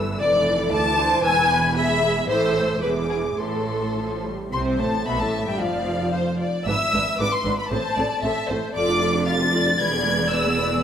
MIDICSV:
0, 0, Header, 1, 6, 480
1, 0, Start_track
1, 0, Key_signature, 0, "minor"
1, 0, Tempo, 523560
1, 189, Time_signature, 2, 2, 24, 8
1, 2591, Tempo, 568720
1, 4031, Tempo, 536193
1, 5471, Tempo, 523104
1, 9776, End_track
2, 0, Start_track
2, 0, Title_t, "Violin section"
2, 0, Program_c, 0, 48
2, 0, Note_on_c, 0, 88, 49
2, 175, Note_off_c, 0, 88, 0
2, 196, Note_on_c, 0, 86, 54
2, 418, Note_off_c, 0, 86, 0
2, 429, Note_on_c, 0, 86, 55
2, 1125, Note_off_c, 0, 86, 0
2, 1140, Note_on_c, 0, 88, 58
2, 1379, Note_off_c, 0, 88, 0
2, 1380, Note_on_c, 0, 83, 59
2, 1602, Note_off_c, 0, 83, 0
2, 1613, Note_on_c, 0, 83, 54
2, 2088, Note_off_c, 0, 83, 0
2, 2102, Note_on_c, 0, 88, 54
2, 2557, Note_off_c, 0, 88, 0
2, 2599, Note_on_c, 0, 86, 49
2, 3072, Note_off_c, 0, 86, 0
2, 3072, Note_on_c, 0, 84, 44
2, 3857, Note_off_c, 0, 84, 0
2, 4029, Note_on_c, 0, 84, 68
2, 4100, Note_off_c, 0, 84, 0
2, 4269, Note_on_c, 0, 81, 67
2, 4504, Note_off_c, 0, 81, 0
2, 4509, Note_on_c, 0, 83, 71
2, 4629, Note_off_c, 0, 83, 0
2, 4631, Note_on_c, 0, 81, 66
2, 4870, Note_off_c, 0, 81, 0
2, 4877, Note_on_c, 0, 79, 61
2, 4984, Note_on_c, 0, 77, 67
2, 4991, Note_off_c, 0, 79, 0
2, 5710, Note_off_c, 0, 77, 0
2, 5952, Note_on_c, 0, 88, 89
2, 6403, Note_off_c, 0, 88, 0
2, 6438, Note_on_c, 0, 86, 86
2, 6557, Note_off_c, 0, 86, 0
2, 6559, Note_on_c, 0, 84, 77
2, 6795, Note_off_c, 0, 84, 0
2, 6803, Note_on_c, 0, 83, 72
2, 6903, Note_on_c, 0, 81, 81
2, 6915, Note_off_c, 0, 83, 0
2, 7613, Note_off_c, 0, 81, 0
2, 7867, Note_on_c, 0, 86, 91
2, 8310, Note_off_c, 0, 86, 0
2, 8349, Note_on_c, 0, 93, 96
2, 8815, Note_off_c, 0, 93, 0
2, 8822, Note_on_c, 0, 92, 92
2, 9300, Note_off_c, 0, 92, 0
2, 9305, Note_on_c, 0, 88, 87
2, 9776, Note_off_c, 0, 88, 0
2, 9776, End_track
3, 0, Start_track
3, 0, Title_t, "Violin section"
3, 0, Program_c, 1, 48
3, 183, Note_on_c, 1, 74, 80
3, 624, Note_off_c, 1, 74, 0
3, 668, Note_on_c, 1, 81, 90
3, 1131, Note_on_c, 1, 80, 88
3, 1132, Note_off_c, 1, 81, 0
3, 1606, Note_off_c, 1, 80, 0
3, 1611, Note_on_c, 1, 76, 87
3, 2087, Note_off_c, 1, 76, 0
3, 2098, Note_on_c, 1, 72, 77
3, 2579, Note_off_c, 1, 72, 0
3, 2589, Note_on_c, 1, 71, 62
3, 2657, Note_off_c, 1, 71, 0
3, 2818, Note_on_c, 1, 68, 51
3, 2885, Note_off_c, 1, 68, 0
3, 3051, Note_on_c, 1, 69, 50
3, 3771, Note_off_c, 1, 69, 0
3, 4025, Note_on_c, 1, 72, 53
3, 4474, Note_off_c, 1, 72, 0
3, 4507, Note_on_c, 1, 76, 57
3, 4978, Note_off_c, 1, 76, 0
3, 4984, Note_on_c, 1, 74, 60
3, 5457, Note_on_c, 1, 72, 57
3, 5467, Note_off_c, 1, 74, 0
3, 5701, Note_off_c, 1, 72, 0
3, 5706, Note_on_c, 1, 74, 59
3, 5943, Note_on_c, 1, 76, 66
3, 5947, Note_off_c, 1, 74, 0
3, 6429, Note_on_c, 1, 71, 62
3, 6432, Note_off_c, 1, 76, 0
3, 6904, Note_on_c, 1, 72, 65
3, 6908, Note_off_c, 1, 71, 0
3, 7142, Note_on_c, 1, 74, 69
3, 7143, Note_off_c, 1, 72, 0
3, 7380, Note_on_c, 1, 76, 75
3, 7388, Note_off_c, 1, 74, 0
3, 7619, Note_on_c, 1, 72, 67
3, 7621, Note_off_c, 1, 76, 0
3, 7854, Note_on_c, 1, 74, 73
3, 7863, Note_off_c, 1, 72, 0
3, 8327, Note_off_c, 1, 74, 0
3, 8329, Note_on_c, 1, 77, 70
3, 8402, Note_off_c, 1, 77, 0
3, 8572, Note_on_c, 1, 74, 73
3, 9757, Note_off_c, 1, 74, 0
3, 9776, End_track
4, 0, Start_track
4, 0, Title_t, "Viola section"
4, 0, Program_c, 2, 48
4, 0, Note_on_c, 2, 52, 54
4, 0, Note_on_c, 2, 71, 49
4, 192, Note_off_c, 2, 71, 0
4, 195, Note_on_c, 2, 69, 51
4, 654, Note_off_c, 2, 69, 0
4, 665, Note_on_c, 2, 69, 55
4, 738, Note_off_c, 2, 69, 0
4, 899, Note_on_c, 2, 72, 59
4, 1134, Note_off_c, 2, 72, 0
4, 1137, Note_on_c, 2, 71, 57
4, 1618, Note_off_c, 2, 71, 0
4, 1619, Note_on_c, 2, 56, 55
4, 1622, Note_on_c, 2, 68, 54
4, 1623, Note_off_c, 2, 52, 0
4, 2098, Note_on_c, 2, 52, 54
4, 2100, Note_off_c, 2, 56, 0
4, 2100, Note_on_c, 2, 69, 53
4, 2102, Note_off_c, 2, 68, 0
4, 2555, Note_off_c, 2, 52, 0
4, 2556, Note_off_c, 2, 69, 0
4, 2589, Note_on_c, 2, 52, 48
4, 2590, Note_on_c, 2, 68, 48
4, 3057, Note_off_c, 2, 52, 0
4, 3058, Note_off_c, 2, 68, 0
4, 3064, Note_on_c, 2, 69, 41
4, 3066, Note_on_c, 2, 52, 40
4, 3496, Note_off_c, 2, 52, 0
4, 3503, Note_off_c, 2, 69, 0
4, 3550, Note_on_c, 2, 53, 44
4, 3776, Note_off_c, 2, 53, 0
4, 3794, Note_on_c, 2, 55, 41
4, 4026, Note_on_c, 2, 60, 65
4, 4029, Note_off_c, 2, 55, 0
4, 4252, Note_off_c, 2, 60, 0
4, 4275, Note_on_c, 2, 57, 60
4, 4511, Note_on_c, 2, 59, 62
4, 4513, Note_off_c, 2, 57, 0
4, 4628, Note_off_c, 2, 59, 0
4, 4634, Note_on_c, 2, 57, 59
4, 4872, Note_off_c, 2, 57, 0
4, 4874, Note_on_c, 2, 55, 59
4, 4990, Note_off_c, 2, 55, 0
4, 4994, Note_on_c, 2, 53, 62
4, 5715, Note_off_c, 2, 53, 0
4, 5958, Note_on_c, 2, 62, 52
4, 5959, Note_on_c, 2, 71, 57
4, 6031, Note_off_c, 2, 62, 0
4, 6032, Note_off_c, 2, 71, 0
4, 6200, Note_on_c, 2, 62, 51
4, 6200, Note_on_c, 2, 71, 51
4, 6273, Note_off_c, 2, 71, 0
4, 6274, Note_off_c, 2, 62, 0
4, 6438, Note_on_c, 2, 71, 54
4, 6439, Note_on_c, 2, 62, 53
4, 6511, Note_off_c, 2, 71, 0
4, 6513, Note_off_c, 2, 62, 0
4, 6671, Note_on_c, 2, 62, 54
4, 6671, Note_on_c, 2, 71, 53
4, 6744, Note_off_c, 2, 71, 0
4, 6745, Note_off_c, 2, 62, 0
4, 6911, Note_on_c, 2, 69, 58
4, 6912, Note_on_c, 2, 60, 60
4, 6984, Note_off_c, 2, 69, 0
4, 6985, Note_off_c, 2, 60, 0
4, 7148, Note_on_c, 2, 69, 55
4, 7150, Note_on_c, 2, 60, 53
4, 7222, Note_off_c, 2, 69, 0
4, 7224, Note_off_c, 2, 60, 0
4, 7397, Note_on_c, 2, 60, 56
4, 7397, Note_on_c, 2, 69, 57
4, 7470, Note_off_c, 2, 60, 0
4, 7471, Note_off_c, 2, 69, 0
4, 7636, Note_on_c, 2, 60, 55
4, 7637, Note_on_c, 2, 69, 57
4, 7710, Note_off_c, 2, 60, 0
4, 7711, Note_off_c, 2, 69, 0
4, 7884, Note_on_c, 2, 65, 60
4, 7885, Note_on_c, 2, 69, 58
4, 7985, Note_off_c, 2, 65, 0
4, 7988, Note_off_c, 2, 69, 0
4, 7996, Note_on_c, 2, 65, 54
4, 7997, Note_on_c, 2, 62, 55
4, 8104, Note_off_c, 2, 65, 0
4, 8112, Note_off_c, 2, 62, 0
4, 8113, Note_on_c, 2, 69, 54
4, 8115, Note_on_c, 2, 65, 53
4, 8225, Note_off_c, 2, 65, 0
4, 8229, Note_off_c, 2, 69, 0
4, 8234, Note_on_c, 2, 62, 52
4, 8236, Note_on_c, 2, 65, 53
4, 8348, Note_off_c, 2, 65, 0
4, 8349, Note_off_c, 2, 62, 0
4, 8358, Note_on_c, 2, 69, 53
4, 8359, Note_on_c, 2, 65, 53
4, 8463, Note_off_c, 2, 65, 0
4, 8463, Note_off_c, 2, 69, 0
4, 8473, Note_on_c, 2, 65, 52
4, 8475, Note_on_c, 2, 62, 53
4, 8588, Note_off_c, 2, 65, 0
4, 8589, Note_off_c, 2, 62, 0
4, 8595, Note_on_c, 2, 69, 52
4, 8597, Note_on_c, 2, 65, 49
4, 8705, Note_off_c, 2, 65, 0
4, 8709, Note_off_c, 2, 69, 0
4, 8710, Note_on_c, 2, 62, 54
4, 8716, Note_on_c, 2, 65, 55
4, 8826, Note_off_c, 2, 62, 0
4, 8829, Note_off_c, 2, 65, 0
4, 8834, Note_on_c, 2, 71, 59
4, 8836, Note_on_c, 2, 56, 53
4, 8940, Note_off_c, 2, 71, 0
4, 8941, Note_off_c, 2, 56, 0
4, 8950, Note_on_c, 2, 59, 55
4, 8952, Note_on_c, 2, 68, 53
4, 9065, Note_off_c, 2, 59, 0
4, 9066, Note_off_c, 2, 68, 0
4, 9066, Note_on_c, 2, 71, 50
4, 9068, Note_on_c, 2, 56, 55
4, 9183, Note_off_c, 2, 71, 0
4, 9184, Note_off_c, 2, 56, 0
4, 9187, Note_on_c, 2, 59, 50
4, 9187, Note_on_c, 2, 68, 49
4, 9304, Note_off_c, 2, 59, 0
4, 9304, Note_off_c, 2, 68, 0
4, 9305, Note_on_c, 2, 71, 53
4, 9306, Note_on_c, 2, 56, 52
4, 9415, Note_off_c, 2, 71, 0
4, 9416, Note_off_c, 2, 56, 0
4, 9431, Note_on_c, 2, 59, 47
4, 9434, Note_on_c, 2, 68, 47
4, 9548, Note_off_c, 2, 59, 0
4, 9549, Note_off_c, 2, 68, 0
4, 9552, Note_on_c, 2, 71, 51
4, 9553, Note_on_c, 2, 56, 48
4, 9670, Note_off_c, 2, 56, 0
4, 9670, Note_off_c, 2, 71, 0
4, 9675, Note_on_c, 2, 59, 52
4, 9677, Note_on_c, 2, 68, 51
4, 9776, Note_off_c, 2, 59, 0
4, 9776, Note_off_c, 2, 68, 0
4, 9776, End_track
5, 0, Start_track
5, 0, Title_t, "Cello section"
5, 0, Program_c, 3, 48
5, 0, Note_on_c, 3, 43, 54
5, 180, Note_off_c, 3, 43, 0
5, 188, Note_on_c, 3, 41, 61
5, 660, Note_off_c, 3, 41, 0
5, 662, Note_on_c, 3, 38, 58
5, 1138, Note_on_c, 3, 40, 63
5, 1139, Note_off_c, 3, 38, 0
5, 2081, Note_off_c, 3, 40, 0
5, 2098, Note_on_c, 3, 45, 58
5, 2555, Note_off_c, 3, 45, 0
5, 2587, Note_on_c, 3, 40, 52
5, 3064, Note_on_c, 3, 45, 47
5, 3065, Note_off_c, 3, 40, 0
5, 3837, Note_off_c, 3, 45, 0
5, 4024, Note_on_c, 3, 48, 62
5, 4251, Note_off_c, 3, 48, 0
5, 4267, Note_on_c, 3, 45, 57
5, 4508, Note_off_c, 3, 45, 0
5, 4510, Note_on_c, 3, 47, 64
5, 4627, Note_off_c, 3, 47, 0
5, 4630, Note_on_c, 3, 45, 60
5, 4869, Note_off_c, 3, 45, 0
5, 4871, Note_on_c, 3, 43, 55
5, 4991, Note_off_c, 3, 43, 0
5, 4995, Note_on_c, 3, 41, 59
5, 5715, Note_off_c, 3, 41, 0
5, 5953, Note_on_c, 3, 44, 64
5, 6027, Note_off_c, 3, 44, 0
5, 6191, Note_on_c, 3, 44, 60
5, 6265, Note_off_c, 3, 44, 0
5, 6436, Note_on_c, 3, 44, 66
5, 6509, Note_off_c, 3, 44, 0
5, 6671, Note_on_c, 3, 44, 61
5, 6745, Note_off_c, 3, 44, 0
5, 6912, Note_on_c, 3, 45, 75
5, 6986, Note_off_c, 3, 45, 0
5, 7153, Note_on_c, 3, 45, 65
5, 7226, Note_off_c, 3, 45, 0
5, 7394, Note_on_c, 3, 45, 65
5, 7467, Note_off_c, 3, 45, 0
5, 7636, Note_on_c, 3, 45, 63
5, 7710, Note_off_c, 3, 45, 0
5, 7870, Note_on_c, 3, 41, 69
5, 8786, Note_off_c, 3, 41, 0
5, 8819, Note_on_c, 3, 40, 68
5, 9766, Note_off_c, 3, 40, 0
5, 9776, End_track
6, 0, Start_track
6, 0, Title_t, "Double bass section"
6, 0, Program_c, 4, 48
6, 0, Note_on_c, 4, 31, 50
6, 179, Note_off_c, 4, 31, 0
6, 187, Note_on_c, 4, 29, 56
6, 658, Note_on_c, 4, 38, 52
6, 659, Note_off_c, 4, 29, 0
6, 1137, Note_off_c, 4, 38, 0
6, 1141, Note_on_c, 4, 28, 60
6, 2083, Note_off_c, 4, 28, 0
6, 2096, Note_on_c, 4, 33, 58
6, 2554, Note_off_c, 4, 33, 0
6, 2588, Note_on_c, 4, 28, 49
6, 3060, Note_on_c, 4, 33, 43
6, 3066, Note_off_c, 4, 28, 0
6, 3836, Note_off_c, 4, 33, 0
6, 4027, Note_on_c, 4, 36, 60
6, 4253, Note_off_c, 4, 36, 0
6, 4265, Note_on_c, 4, 33, 54
6, 4508, Note_off_c, 4, 33, 0
6, 4510, Note_on_c, 4, 35, 65
6, 4627, Note_off_c, 4, 35, 0
6, 4628, Note_on_c, 4, 33, 59
6, 4869, Note_off_c, 4, 33, 0
6, 4986, Note_on_c, 4, 29, 53
6, 5711, Note_off_c, 4, 29, 0
6, 5953, Note_on_c, 4, 32, 65
6, 6026, Note_off_c, 4, 32, 0
6, 6199, Note_on_c, 4, 32, 59
6, 6272, Note_off_c, 4, 32, 0
6, 6435, Note_on_c, 4, 32, 61
6, 6508, Note_off_c, 4, 32, 0
6, 6670, Note_on_c, 4, 32, 60
6, 6743, Note_off_c, 4, 32, 0
6, 6909, Note_on_c, 4, 33, 68
6, 6982, Note_off_c, 4, 33, 0
6, 7146, Note_on_c, 4, 33, 61
6, 7219, Note_off_c, 4, 33, 0
6, 7388, Note_on_c, 4, 33, 64
6, 7461, Note_off_c, 4, 33, 0
6, 7627, Note_on_c, 4, 33, 68
6, 7701, Note_off_c, 4, 33, 0
6, 7865, Note_on_c, 4, 29, 68
6, 8783, Note_off_c, 4, 29, 0
6, 8822, Note_on_c, 4, 28, 60
6, 9768, Note_off_c, 4, 28, 0
6, 9776, End_track
0, 0, End_of_file